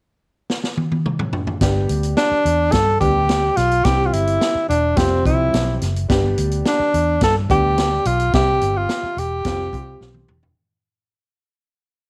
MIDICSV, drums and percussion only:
0, 0, Header, 1, 2, 480
1, 0, Start_track
1, 0, Tempo, 559180
1, 1385, Time_signature, 4, 2, 24, 8
1, 10385, End_track
2, 0, Start_track
2, 0, Title_t, "Drums"
2, 427, Note_on_c, 9, 38, 60
2, 513, Note_off_c, 9, 38, 0
2, 546, Note_on_c, 9, 38, 51
2, 632, Note_off_c, 9, 38, 0
2, 664, Note_on_c, 9, 48, 59
2, 750, Note_off_c, 9, 48, 0
2, 787, Note_on_c, 9, 48, 50
2, 873, Note_off_c, 9, 48, 0
2, 907, Note_on_c, 9, 47, 70
2, 993, Note_off_c, 9, 47, 0
2, 1024, Note_on_c, 9, 45, 72
2, 1110, Note_off_c, 9, 45, 0
2, 1140, Note_on_c, 9, 43, 81
2, 1226, Note_off_c, 9, 43, 0
2, 1262, Note_on_c, 9, 43, 75
2, 1348, Note_off_c, 9, 43, 0
2, 1381, Note_on_c, 9, 42, 85
2, 1383, Note_on_c, 9, 36, 96
2, 1384, Note_on_c, 9, 38, 103
2, 1466, Note_off_c, 9, 42, 0
2, 1469, Note_off_c, 9, 36, 0
2, 1470, Note_off_c, 9, 38, 0
2, 1623, Note_on_c, 9, 42, 75
2, 1709, Note_off_c, 9, 42, 0
2, 1743, Note_on_c, 9, 42, 46
2, 1829, Note_off_c, 9, 42, 0
2, 1862, Note_on_c, 9, 38, 92
2, 1866, Note_on_c, 9, 42, 64
2, 1948, Note_off_c, 9, 38, 0
2, 1951, Note_off_c, 9, 42, 0
2, 2109, Note_on_c, 9, 42, 69
2, 2195, Note_off_c, 9, 42, 0
2, 2334, Note_on_c, 9, 42, 92
2, 2341, Note_on_c, 9, 36, 91
2, 2346, Note_on_c, 9, 38, 119
2, 2420, Note_off_c, 9, 42, 0
2, 2427, Note_off_c, 9, 36, 0
2, 2432, Note_off_c, 9, 38, 0
2, 2583, Note_on_c, 9, 36, 83
2, 2586, Note_on_c, 9, 42, 64
2, 2669, Note_off_c, 9, 36, 0
2, 2672, Note_off_c, 9, 42, 0
2, 2824, Note_on_c, 9, 42, 73
2, 2829, Note_on_c, 9, 38, 93
2, 2909, Note_off_c, 9, 42, 0
2, 2915, Note_off_c, 9, 38, 0
2, 3064, Note_on_c, 9, 42, 66
2, 3067, Note_on_c, 9, 38, 31
2, 3150, Note_off_c, 9, 42, 0
2, 3153, Note_off_c, 9, 38, 0
2, 3188, Note_on_c, 9, 42, 39
2, 3274, Note_off_c, 9, 42, 0
2, 3301, Note_on_c, 9, 42, 88
2, 3305, Note_on_c, 9, 38, 105
2, 3306, Note_on_c, 9, 36, 96
2, 3387, Note_off_c, 9, 42, 0
2, 3391, Note_off_c, 9, 38, 0
2, 3392, Note_off_c, 9, 36, 0
2, 3548, Note_on_c, 9, 42, 77
2, 3634, Note_off_c, 9, 42, 0
2, 3669, Note_on_c, 9, 42, 49
2, 3754, Note_off_c, 9, 42, 0
2, 3789, Note_on_c, 9, 38, 91
2, 3792, Note_on_c, 9, 42, 65
2, 3875, Note_off_c, 9, 38, 0
2, 3878, Note_off_c, 9, 42, 0
2, 4038, Note_on_c, 9, 42, 71
2, 4124, Note_off_c, 9, 42, 0
2, 4264, Note_on_c, 9, 42, 85
2, 4269, Note_on_c, 9, 36, 94
2, 4276, Note_on_c, 9, 38, 108
2, 4350, Note_off_c, 9, 42, 0
2, 4355, Note_off_c, 9, 36, 0
2, 4362, Note_off_c, 9, 38, 0
2, 4511, Note_on_c, 9, 36, 88
2, 4518, Note_on_c, 9, 42, 69
2, 4597, Note_off_c, 9, 36, 0
2, 4603, Note_off_c, 9, 42, 0
2, 4753, Note_on_c, 9, 42, 85
2, 4758, Note_on_c, 9, 38, 98
2, 4839, Note_off_c, 9, 42, 0
2, 4844, Note_off_c, 9, 38, 0
2, 4992, Note_on_c, 9, 42, 69
2, 4996, Note_on_c, 9, 38, 28
2, 5078, Note_off_c, 9, 42, 0
2, 5081, Note_off_c, 9, 38, 0
2, 5118, Note_on_c, 9, 42, 42
2, 5204, Note_off_c, 9, 42, 0
2, 5234, Note_on_c, 9, 36, 101
2, 5236, Note_on_c, 9, 42, 80
2, 5240, Note_on_c, 9, 38, 98
2, 5320, Note_off_c, 9, 36, 0
2, 5322, Note_off_c, 9, 42, 0
2, 5326, Note_off_c, 9, 38, 0
2, 5473, Note_on_c, 9, 42, 75
2, 5559, Note_off_c, 9, 42, 0
2, 5592, Note_on_c, 9, 42, 44
2, 5678, Note_off_c, 9, 42, 0
2, 5713, Note_on_c, 9, 38, 97
2, 5717, Note_on_c, 9, 42, 74
2, 5799, Note_off_c, 9, 38, 0
2, 5802, Note_off_c, 9, 42, 0
2, 5957, Note_on_c, 9, 42, 66
2, 6043, Note_off_c, 9, 42, 0
2, 6188, Note_on_c, 9, 42, 95
2, 6194, Note_on_c, 9, 36, 97
2, 6200, Note_on_c, 9, 38, 123
2, 6274, Note_off_c, 9, 42, 0
2, 6280, Note_off_c, 9, 36, 0
2, 6286, Note_off_c, 9, 38, 0
2, 6436, Note_on_c, 9, 36, 86
2, 6440, Note_on_c, 9, 42, 75
2, 6522, Note_off_c, 9, 36, 0
2, 6526, Note_off_c, 9, 42, 0
2, 6675, Note_on_c, 9, 42, 75
2, 6680, Note_on_c, 9, 38, 98
2, 6761, Note_off_c, 9, 42, 0
2, 6766, Note_off_c, 9, 38, 0
2, 6912, Note_on_c, 9, 42, 73
2, 6998, Note_off_c, 9, 42, 0
2, 7034, Note_on_c, 9, 42, 47
2, 7120, Note_off_c, 9, 42, 0
2, 7154, Note_on_c, 9, 42, 82
2, 7156, Note_on_c, 9, 36, 107
2, 7157, Note_on_c, 9, 38, 112
2, 7240, Note_off_c, 9, 42, 0
2, 7242, Note_off_c, 9, 36, 0
2, 7243, Note_off_c, 9, 38, 0
2, 7394, Note_on_c, 9, 42, 72
2, 7480, Note_off_c, 9, 42, 0
2, 7633, Note_on_c, 9, 38, 96
2, 7637, Note_on_c, 9, 42, 67
2, 7719, Note_off_c, 9, 38, 0
2, 7723, Note_off_c, 9, 42, 0
2, 7881, Note_on_c, 9, 42, 70
2, 7967, Note_off_c, 9, 42, 0
2, 8108, Note_on_c, 9, 42, 88
2, 8113, Note_on_c, 9, 36, 97
2, 8120, Note_on_c, 9, 38, 114
2, 8194, Note_off_c, 9, 42, 0
2, 8198, Note_off_c, 9, 36, 0
2, 8206, Note_off_c, 9, 38, 0
2, 8352, Note_on_c, 9, 36, 78
2, 8359, Note_on_c, 9, 42, 68
2, 8438, Note_off_c, 9, 36, 0
2, 8445, Note_off_c, 9, 42, 0
2, 8593, Note_on_c, 9, 38, 47
2, 8679, Note_off_c, 9, 38, 0
2, 8707, Note_on_c, 9, 48, 56
2, 8793, Note_off_c, 9, 48, 0
2, 8828, Note_on_c, 9, 45, 73
2, 8914, Note_off_c, 9, 45, 0
2, 8952, Note_on_c, 9, 43, 74
2, 9038, Note_off_c, 9, 43, 0
2, 10385, End_track
0, 0, End_of_file